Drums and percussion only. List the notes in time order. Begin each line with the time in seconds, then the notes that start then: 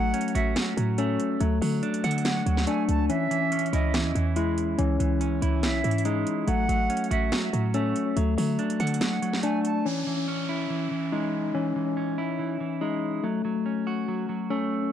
0.14 closed hi-hat
0.21 closed hi-hat
0.28 closed hi-hat
0.35 closed hi-hat
0.56 cross-stick, snare, closed hi-hat
0.78 closed hi-hat
0.98 closed hi-hat
1.20 closed hi-hat
1.41 closed hi-hat
1.62 open hi-hat
1.83 closed hi-hat
1.94 closed hi-hat
2.04 closed hi-hat
2.11 closed hi-hat
2.18 closed hi-hat
2.25 snare, closed hi-hat
2.47 closed hi-hat
2.57 snare
2.67 closed hi-hat
2.89 closed hi-hat
3.10 closed hi-hat
3.31 closed hi-hat
3.52 closed hi-hat
3.59 closed hi-hat
3.66 closed hi-hat
3.73 closed hi-hat
3.94 cross-stick, snare, closed hi-hat
4.16 closed hi-hat
4.36 closed hi-hat
4.58 closed hi-hat
4.79 closed hi-hat
5.00 closed hi-hat
5.21 closed hi-hat
5.42 closed hi-hat
5.63 cross-stick, snare, closed hi-hat
5.84 closed hi-hat
5.91 closed hi-hat
5.98 closed hi-hat
6.05 closed hi-hat
6.27 closed hi-hat
6.48 closed hi-hat
6.69 closed hi-hat
6.90 closed hi-hat
6.97 closed hi-hat
7.04 closed hi-hat
7.11 closed hi-hat
7.32 cross-stick, snare, closed hi-hat
7.54 closed hi-hat
7.74 closed hi-hat
7.96 closed hi-hat
8.17 closed hi-hat
8.38 open hi-hat
8.59 closed hi-hat
8.70 closed hi-hat
8.80 closed hi-hat
8.87 closed hi-hat
8.94 closed hi-hat
9.01 snare, closed hi-hat
9.23 closed hi-hat
9.33 snare
9.43 closed hi-hat
9.65 closed hi-hat